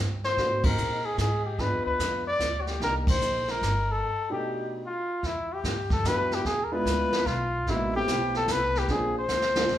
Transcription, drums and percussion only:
0.24 snare
0.37 brush sweep, kick, snare
0.64 kick, ride
0.78 hi-hat pedal
1.18 kick, snare, hi-hat pedal
1.59 brush sweep, kick, snare
1.99 kick, snare, hi-hat pedal
2.40 kick, snare, hi-hat pedal
2.67 snare
2.81 brush sweep, kick, snare
3.07 kick, ride
3.22 hi-hat pedal
3.48 snare
3.62 kick, snare, hi-hat pedal
5.23 brush sweep, kick, snare
5.64 kick, snare, hi-hat pedal
5.90 kick, snare
6.04 kick, snare, hi-hat pedal
6.31 snare
6.45 brush sweep, kick, snare
6.86 kick, snare, hi-hat pedal
7.13 snare
7.26 kick, snare
7.67 brush sweep, kick, snare
8.07 kick, snare, hi-hat pedal
8.35 snare
8.48 kick, snare, hi-hat pedal
8.75 snare
8.88 brush sweep, kick, snare
9.29 snare, hi-hat pedal
9.42 snare
9.56 snare
9.69 snare

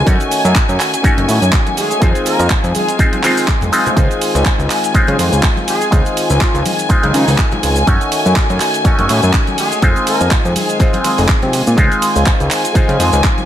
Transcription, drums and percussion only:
0.07 kick, closed hi-hat, maracas, shaker
0.20 closed hi-hat, maracas, shaker
0.31 open hi-hat, shaker
0.45 closed hi-hat, maracas, shaker
0.55 kick, clap, closed hi-hat, maracas, shaker
0.68 closed hi-hat, maracas, shaker
0.80 clap, open hi-hat, shaker
0.94 closed hi-hat, maracas, shaker
1.04 kick, closed hi-hat, shaker, maracas
1.18 closed hi-hat, high conga, maracas
1.29 open hi-hat, shaker
1.42 closed hi-hat, shaker, maracas
1.52 kick, clap, closed hi-hat, maracas, shaker
1.67 closed hi-hat, high conga, maracas
1.77 open hi-hat, shaker
1.91 closed hi-hat, maracas, shaker
2.02 kick, closed hi-hat, shaker, maracas
2.15 closed hi-hat, shaker, maracas
2.26 open hi-hat, shaker
2.40 closed hi-hat, shaker, maracas
2.50 kick, clap, closed hi-hat, shaker
2.64 closed hi-hat, shaker, maracas
2.75 open hi-hat, high conga, shaker
2.88 closed hi-hat, shaker, maracas
2.99 kick, closed hi-hat, shaker, maracas
3.13 closed hi-hat, high conga, maracas
3.23 clap, open hi-hat, shaker
3.37 open hi-hat, maracas, shaker
3.48 kick, clap, maracas, shaker
3.61 closed hi-hat, high conga, low conga, maracas, shaker
3.73 open hi-hat, shaker
3.86 closed hi-hat, low conga, maracas, shaker
3.97 kick, closed hi-hat, maracas, shaker
4.11 closed hi-hat, maracas, shaker
4.22 open hi-hat, ride, shaker
4.35 closed hi-hat, maracas, shaker
4.45 kick, clap, closed hi-hat, maracas, shaker
4.59 closed hi-hat, maracas, shaker
4.70 clap, open hi-hat, ride, shaker
4.84 closed hi-hat, shaker, maracas
4.94 kick, closed hi-hat, maracas, shaker
5.07 closed hi-hat, high conga, maracas
5.19 open hi-hat, ride, shaker
5.33 closed hi-hat, maracas, shaker
5.43 kick, clap, closed hi-hat, shaker, maracas
5.57 closed hi-hat, high conga, maracas
5.68 open hi-hat, ride, shaker
5.81 closed hi-hat, maracas, shaker
5.92 kick, closed hi-hat, maracas, shaker
6.05 closed hi-hat, maracas, shaker
6.17 open hi-hat, ride, shaker
6.30 closed hi-hat, maracas, shaker
6.41 kick, clap, closed hi-hat, maracas, shaker
6.55 closed hi-hat, maracas, shaker
6.66 open hi-hat, ride, high conga, shaker
6.79 closed hi-hat, maracas, shaker
6.89 kick, closed hi-hat, maracas, shaker
7.03 closed hi-hat, high conga, maracas
7.14 open hi-hat, ride, shaker
7.28 open hi-hat, shaker, maracas
7.38 kick, clap, closed hi-hat, maracas, shaker
7.51 closed hi-hat, high conga, low conga, maracas
7.63 open hi-hat, ride, shaker
7.76 closed hi-hat, maracas, shaker
7.87 kick, closed hi-hat, maracas, shaker
8.01 closed hi-hat, maracas, shaker
8.12 open hi-hat, ride, shaker
8.26 closed hi-hat, shaker, maracas
8.36 kick, clap, closed hi-hat, maracas, shaker
8.50 closed hi-hat, maracas, shaker
8.60 clap, open hi-hat, ride, shaker
8.74 closed hi-hat, shaker, maracas
8.85 kick, closed hi-hat, maracas, shaker
8.99 closed hi-hat, high conga, maracas
9.09 open hi-hat, ride, shaker
9.23 closed hi-hat, shaker, maracas
9.33 kick, clap, closed hi-hat, maracas, shaker
9.47 closed hi-hat, high conga, maracas
9.58 open hi-hat, ride, shaker
9.72 closed hi-hat, shaker, maracas
9.82 kick, closed hi-hat, shaker, maracas
9.96 closed hi-hat, shaker, maracas
10.07 open hi-hat, ride, shaker
10.21 closed hi-hat, maracas, shaker
10.31 kick, clap, closed hi-hat, maracas, shaker
10.45 closed hi-hat, maracas, shaker
10.56 open hi-hat, ride, high conga, shaker
10.69 closed hi-hat, maracas, shaker
10.80 kick, closed hi-hat, maracas, shaker
10.93 closed hi-hat, high conga, maracas
11.04 open hi-hat, ride, shaker
11.18 open hi-hat, maracas, shaker
11.28 kick, clap, closed hi-hat, maracas, shaker
11.42 closed hi-hat, high conga, low conga, maracas
11.53 open hi-hat, ride, shaker
11.67 closed hi-hat, maracas, shaker
11.78 kick, closed hi-hat, shaker, maracas
11.91 closed hi-hat, maracas, shaker
12.02 open hi-hat, ride, shaker
12.16 closed hi-hat, maracas, shaker
12.26 kick, clap, closed hi-hat, maracas, shaker
12.40 closed hi-hat, maracas, shaker
12.51 clap, open hi-hat, ride, shaker
12.65 closed hi-hat, maracas, shaker
12.75 kick, closed hi-hat, maracas, shaker
12.88 closed hi-hat, high conga, maracas
13.00 open hi-hat, ride, shaker
13.13 closed hi-hat, maracas, shaker
13.24 kick, clap, closed hi-hat, maracas, shaker
13.38 closed hi-hat, high conga, maracas

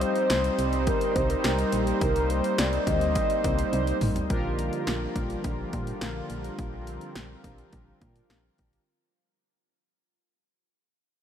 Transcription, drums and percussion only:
0.01 closed hi-hat
0.16 closed hi-hat
0.30 snare, closed hi-hat
0.44 closed hi-hat
0.59 closed hi-hat
0.73 closed hi-hat
0.87 kick, closed hi-hat
1.01 closed hi-hat
1.16 kick, closed hi-hat
1.30 closed hi-hat
1.44 snare, closed hi-hat
1.59 closed hi-hat
1.72 closed hi-hat
1.87 closed hi-hat
2.01 kick, closed hi-hat
2.16 closed hi-hat
2.30 closed hi-hat
2.44 closed hi-hat
2.58 snare, closed hi-hat
2.73 closed hi-hat
2.87 kick, closed hi-hat
3.01 closed hi-hat
3.15 kick, closed hi-hat
3.30 closed hi-hat
3.44 kick, closed hi-hat
3.59 closed hi-hat
3.73 closed hi-hat, high tom
3.87 closed hi-hat
4.01 mid tom, open hi-hat
4.16 closed hi-hat, floor tom
4.30 kick, closed hi-hat
4.59 closed hi-hat
4.73 closed hi-hat
4.87 snare, closed hi-hat
5.16 kick, closed hi-hat
5.30 closed hi-hat
5.44 kick, closed hi-hat
5.73 kick, closed hi-hat
5.87 closed hi-hat
6.01 snare, closed hi-hat
6.30 closed hi-hat
6.44 closed hi-hat
6.59 kick, closed hi-hat
6.87 closed hi-hat
7.01 closed hi-hat
7.15 snare, closed hi-hat
7.44 kick, closed hi-hat
7.58 closed hi-hat
7.73 kick, closed hi-hat
8.01 kick, closed hi-hat
8.16 closed hi-hat
8.30 snare, closed hi-hat
8.58 kick, closed hi-hat
8.73 closed hi-hat

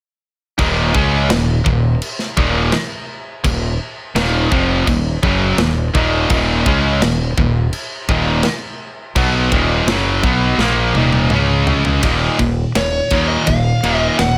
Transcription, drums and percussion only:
0.59 kick, crash
0.95 kick
1.30 snare, crash
1.66 kick
2.02 crash
2.19 snare
2.37 kick
2.72 snare, crash
3.44 kick, crash
4.16 snare, crash
4.52 kick
4.87 kick, crash
5.23 kick
5.58 snare, crash
5.95 kick
6.30 kick, crash
6.66 kick
7.02 snare, crash
7.38 kick
7.73 crash
8.09 kick
8.43 snare, crash
9.16 kick, crash
9.52 kick
9.88 snare, crash
10.24 kick
10.59 snare
10.95 high tom
11.13 high tom
11.30 mid tom
11.67 floor tom
11.85 floor tom
12.03 kick, ride
12.39 kick, ride
12.75 snare, ride
13.10 kick, ride
13.47 kick, ride
13.84 ride
14.19 snare, ride

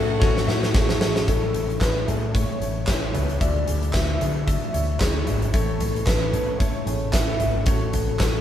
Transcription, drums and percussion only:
0.22 kick, snare
0.37 snare
0.48 snare
0.63 snare
0.74 kick, snare
0.89 snare
1.01 snare
1.16 snare
1.28 kick, closed hi-hat
1.54 closed hi-hat
1.70 closed hi-hat
1.81 kick, snare, clap, closed hi-hat
2.08 closed hi-hat, floor tom
2.35 kick, closed hi-hat
2.62 closed hi-hat
2.87 kick, snare, clap, closed hi-hat
3.14 closed hi-hat, floor tom
3.29 closed hi-hat
3.41 kick, closed hi-hat
3.68 closed hi-hat
3.83 closed hi-hat
3.93 kick, snare, clap, closed hi-hat
4.21 closed hi-hat, floor tom
4.48 kick, closed hi-hat
4.74 closed hi-hat
5.00 kick, snare, clap, closed hi-hat
5.27 closed hi-hat, floor tom
5.42 closed hi-hat
5.54 kick, closed hi-hat
5.80 closed hi-hat, floor tom
5.96 closed hi-hat
6.07 kick, snare, clap, closed hi-hat
6.33 closed hi-hat, floor tom
6.60 kick, closed hi-hat
6.87 closed hi-hat
7.13 kick, snare, clap, closed hi-hat
7.40 closed hi-hat, floor tom
7.66 kick, closed hi-hat
7.93 closed hi-hat, floor tom
8.19 kick, snare, clap, closed hi-hat

